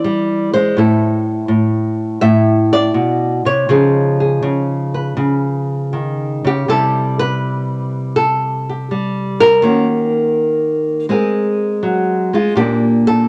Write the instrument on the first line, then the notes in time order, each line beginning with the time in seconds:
nylon-string guitar
Already playing: E3 G4 D5
0.04 G3
0.54 G#3 C5
0.77 A2 E4 A4
1.48 A2
2.21 A2 E5
2.73 D5
2.94 B2
3.45 C3 C#5
3.69 C#3 F3 D#4 G#4
4.20 G#4
4.43 C#3
4.94 B4
5.17 C#3
5.93 D#3
6.44 C#3 G4
6.68 C3 G3 E4 G4 A4
7.19 B4
8.16 A4
8.69 G4
8.91 G3
9.41 A#4
9.62 D#3 A#3 C#4 F#4
11.09 G#3 C4 G#4 A#4
11.83 F#3
12.33 G#3 F4
12.56 A#2 A#3 D4 G4
13.07 A4